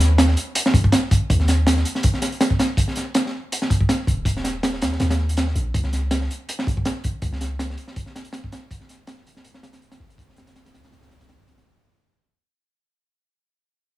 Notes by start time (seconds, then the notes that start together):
Already playing: D#2
0.00 snare, closed hi-hat
0.18 snare, closed hi-hat
0.28 snare
0.37 closed hi-hat
0.55 closed hi-hat
0.66 snare
0.74 A#1, kick, closed hi-hat
0.84 kick
0.92 snare, closed hi-hat
1.11 kick, closed hi-hat
1.30 D#2, kick, closed hi-hat
1.40 snare
1.48 snare, closed hi-hat
1.67 snare, closed hi-hat
1.77 snare
1.85 closed hi-hat
1.95 snare
2.03 kick, closed hi-hat
2.14 snare
2.22 snare, closed hi-hat
2.32 closed hi-hat
2.41 snare, closed hi-hat
2.50 kick
2.59 snare, closed hi-hat
2.77 kick, closed hi-hat
2.88 snare
2.96 snare, closed hi-hat
3.14 snare, closed hi-hat
3.26 snare
3.52 closed hi-hat
3.62 snare
3.70 kick, closed hi-hat
3.81 kick
3.89 snare, closed hi-hat
4.07 D#1, kick, closed hi-hat
4.25 kick, closed hi-hat
4.37 snare
4.44 snare, closed hi-hat
4.63 snare, closed hi-hat
4.73 snare
4.81 D#2, snare, closed hi-hat
4.92 snare
5.00 D#2, snare, closed hi-hat
5.10 snare, closed hi-hat
5.19 snare
5.29 closed hi-hat
5.37 snare, closed hi-hat
5.47 snare
5.55 A#1, closed hi-hat
5.74 C#2, kick, closed hi-hat
5.84 snare
5.93 snare, closed hi-hat
6.11 snare, closed hi-hat
6.21 snare
6.31 closed hi-hat
6.49 closed hi-hat
6.59 snare
6.67 G#1, kick, closed hi-hat
6.77 kick
6.85 snare, closed hi-hat
7.04 kick, closed hi-hat
7.22 C#2, kick, closed hi-hat
7.33 snare
7.41 snare, closed hi-hat
7.59 snare, closed hi-hat
7.70 snare
7.77 closed hi-hat
7.87 snare
7.96 kick, closed hi-hat
8.06 snare
8.16 snare, closed hi-hat
8.25 closed hi-hat
8.33 snare, closed hi-hat
8.44 kick
8.52 snare, closed hi-hat
8.71 kick, closed hi-hat
8.80 snare
8.89 snare, closed hi-hat
9.07 snare, closed hi-hat
9.17 snare
9.27 closed hi-hat
9.36 snare
9.44 closed hi-hat
9.54 snare
9.63 snare, closed hi-hat
9.73 snare, closed hi-hat
9.82 closed hi-hat
9.91 snare, closed hi-hat
10.00 G#1, snare
10.10 closed hi-hat
10.18 kick, closed hi-hat
10.29 snare
10.36 snare, closed hi-hat
10.47 snare, closed hi-hat
10.56 snare, closed hi-hat
10.65 snare, closed hi-hat
10.74 C#2, snare, closed hi-hat
10.83 snare, closed hi-hat
10.92 C#2, snare, closed hi-hat
11.02 snare, closed hi-hat
11.11 snare, closed hi-hat
11.20 snare, closed hi-hat
11.29 snare, closed hi-hat
11.39 kick
11.47 B1, snare, closed hi-hat
11.58 snare, closed hi-hat